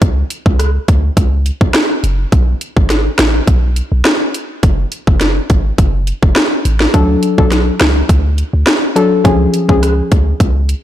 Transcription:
0.02 0.24 C#2 loud
0.02 kick loud
0.02 closed hi-hat medium
0.30 closed hi-hat medium
0.46 0.79 C#2 medium
0.46 kick medium
0.59 cross-stick medium
0.59 closed hi-hat medium
0.88 1.11 D2 medium
0.88 kick medium
0.88 closed hi-hat medium
1.17 1.51 C#2 loud
1.17 kick medium
1.17 closed hi-hat medium
1.46 closed hi-hat soft
1.61 1.71 C#2 medium
1.61 kick loud
1.74 cross-stick medium
1.74 snare loud
1.74 closed hi-hat medium
2.04 2.26 F#1 medium
2.04 closed hi-hat medium
2.32 2.55 B1 loud
2.32 kick loud
2.32 closed hi-hat medium
2.61 closed hi-hat medium
2.77 3.09 G#1 medium
2.77 kick medium
2.90 cross-stick medium
2.90 snare medium
2.90 closed hi-hat medium
3.18 3.41 A1 medium
3.18 cross-stick medium
3.18 snare loud
3.18 closed hi-hat medium
3.47 3.82 B1 loud
3.47 kick loud
3.47 closed hi-hat medium
3.76 closed hi-hat medium
3.92 4.02 B1 loud
4.04 cross-stick medium
4.04 snare loud
4.04 closed hi-hat medium
4.34 closed hi-hat medium
4.63 4.85 F#1 loud
4.63 kick loud
4.63 closed hi-hat medium
4.92 closed hi-hat medium
5.07 5.40 F#1 medium
5.07 kick medium
5.21 snare medium
5.21 closed hi-hat medium
5.50 5.72 G#1 medium
5.50 kick medium
5.50 closed hi-hat medium
5.78 6.13 F#1 loud
5.78 kick loud
5.78 closed hi-hat medium
6.07 closed hi-hat soft
6.23 6.33 F#1 medium
6.23 kick loud
6.35 cross-stick medium
6.35 snare loud
6.35 closed hi-hat medium
6.65 6.87 A1 medium
6.65 closed hi-hat medium
6.80 snare medium
6.94 7.16 D2 loud
6.94 7.34 F#3 medium
6.94 7.34 D4 medium
6.94 7.35 A4 loud
6.94 kick loud
6.94 closed hi-hat medium
7.23 closed hi-hat medium
7.38 7.71 B1 medium
7.38 7.50 F#3 medium
7.38 7.50 D4 medium
7.38 7.51 A4 medium
7.38 kick medium
7.52 cross-stick medium
7.52 snare medium
7.52 closed hi-hat medium
7.80 8.03 C#2 medium
7.80 cross-stick medium
7.80 snare loud
7.80 closed hi-hat medium
8.09 8.43 D2 loud
8.09 kick loud
8.09 closed hi-hat medium
8.38 closed hi-hat soft
8.53 8.64 D2 medium
8.66 cross-stick medium
8.66 snare loud
8.66 closed hi-hat medium
8.95 9.10 F#3 medium
8.95 9.10 D4 medium
8.95 9.10 A4 medium
8.95 closed hi-hat medium
9.24 9.47 C#2 loud
9.24 9.65 F3 medium
9.24 9.65 C#4 medium
9.24 9.65 G#4 loud
9.24 kick loud
9.24 closed hi-hat medium
9.54 closed hi-hat medium
9.69 10.02 C#2 medium
9.69 9.81 F3 medium
9.69 9.81 C#4 medium
9.69 9.81 G#4 medium
9.69 kick medium
9.83 cross-stick medium
9.83 closed hi-hat medium
10.12 10.34 D2 medium
10.12 kick loud
10.12 closed hi-hat medium
10.40 10.74 C#2 loud
10.40 kick medium
10.40 closed hi-hat medium
10.69 closed hi-hat soft

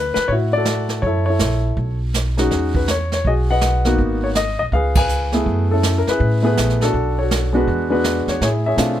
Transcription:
0.00 0.12 D2 medium
0.00 0.13 B4 medium
0.14 0.29 B4 medium
0.14 muted upright bass stroke soft
0.14 snare soft
0.28 1.00 A2 medium
0.28 0.33 C#5 medium
0.28 brush sweep soft
0.28 kick soft
0.32 1.01 E4 medium
0.32 0.56 F#4 medium
0.53 1.05 D5 medium
0.57 1.02 F#4 medium
0.57 1.02 A4 medium
0.65 snare medium
0.65 hi-hat pedal soft
0.89 snare soft
1.02 1.38 F#2 medium
1.02 1.24 C#5 medium
1.02 brush sweep medium
1.02 kick soft
1.06 1.28 E4 medium
1.06 1.29 A4 medium
1.26 1.75 E4 medium
1.26 1.96 C#5 medium
1.30 1.98 A4 medium
1.39 1.74 A#1 medium
1.39 snare medium
1.39 hi-hat pedal medium
1.77 2.47 B1 medium
1.77 brush sweep soft
1.77 kick soft
2.14 snare soft
2.14 hi-hat pedal medium
2.37 2.85 G#3 medium
2.37 2.85 C#4 soft
2.37 2.86 D#4 medium
2.37 2.86 F#4 medium
2.37 snare soft
2.51 3.21 E2 medium
2.51 brush sweep medium
2.51 kick soft
2.51 snare soft
2.75 2.88 B4 medium
2.75 kick soft
2.88 3.12 C#5 medium
2.88 snare medium
2.88 hi-hat pedal soft
3.12 3.26 C#5 medium
3.12 snare soft
3.24 3.95 B1 medium
3.24 3.86 F#4 medium
3.24 3.96 G#4 medium
3.24 3.32 D#5 medium
3.24 brush sweep soft
3.24 kick soft
3.51 3.97 B4 medium
3.51 3.97 D#5 medium
3.51 3.96 F#5 medium
3.61 snare medium
3.61 hi-hat pedal medium
3.85 4.33 A#3 medium
3.85 4.33 B3 medium
3.85 4.33 D#4 medium
3.85 4.34 F#4 medium
3.85 snare soft
3.98 4.55 G#1 medium
3.98 brush sweep medium
3.98 kick soft
4.24 4.29 C#5 medium
4.35 4.58 D#5 medium
4.35 snare medium
4.35 hi-hat pedal medium
4.59 4.71 B1 medium
4.59 4.64 D#5 medium
4.72 5.42 C#2 medium
4.72 5.33 G#4 medium
4.72 4.97 B4 medium
4.72 4.95 F5 medium
4.72 brush sweep soft
4.72 kick soft
4.95 5.44 B4 medium
4.95 5.44 F5 medium
4.95 5.43 G#5 medium
4.95 kick medium
4.95 ride medium
5.09 hi-hat pedal soft
5.32 5.81 A3 medium
5.32 5.81 B3 medium
5.32 5.72 E4 medium
5.32 5.81 G#4 medium
5.32 snare soft
5.46 6.03 F#2 medium
5.46 brush sweep soft
5.46 kick soft
5.71 6.41 C#4 soft
5.71 6.09 E4 soft
5.71 5.99 A4 medium
5.83 snare medium
5.83 hi-hat pedal medium
5.98 6.07 A#4 medium
6.07 6.42 E4 medium
6.07 6.43 G#4 medium
6.07 6.42 B4 medium
6.07 muted upright bass stroke soft
6.07 snare soft
6.20 6.54 A2 medium
6.20 brush sweep soft
6.20 kick soft
6.43 6.91 A3 medium
6.43 6.91 B3 medium
6.43 6.47 E4 medium
6.43 6.46 G#4 medium
6.43 6.79 B4 medium
6.48 6.93 E4 medium
6.48 6.92 G#4 medium
6.57 6.91 A#1 medium
6.57 snare medium
6.57 hi-hat pedal medium
6.70 snare soft
6.81 7.52 D4 medium
6.81 7.20 F#4 medium
6.81 7.19 A4 medium
6.81 snare soft
6.94 7.64 B1 medium
6.94 brush sweep soft
6.94 kick soft
7.19 7.53 F#4 soft
7.19 7.66 A4 soft
7.19 7.52 C#5 medium
7.31 snare medium
7.31 hi-hat pedal medium
7.53 7.88 G#3 medium
7.53 7.88 B3 medium
7.53 7.57 D4 medium
7.53 7.89 F#4 medium
7.53 7.90 B4 medium
7.58 7.89 D4 soft
7.58 7.93 G#4 soft
7.68 8.24 E2 medium
7.68 brush sweep soft
7.68 kick soft
7.90 8.38 G#3 medium
7.90 8.38 B3 medium
7.90 7.93 D4 medium
7.90 8.38 F#4 medium
7.90 8.26 B4 medium
7.94 8.39 D4 soft
7.94 8.39 G#4 soft
8.04 snare medium
8.04 hi-hat pedal medium
8.27 8.40 E2 medium
8.27 8.41 C#5 medium
8.27 snare soft
8.41 8.77 A2 medium
8.41 9.00 E4 medium
8.41 8.67 G#4 medium
8.41 8.48 C#5 medium
8.41 brush sweep medium
8.41 kick soft
8.41 snare soft
8.66 9.00 G#4 medium
8.66 9.00 C#5 medium
8.66 9.00 E5 medium
8.76 9.00 B2 medium
8.76 8.98 A3 medium
8.76 8.99 C4 soft
8.76 8.99 D4 medium
8.76 8.99 F4 medium
8.76 kick soft
8.76 snare medium
8.76 hi-hat pedal medium

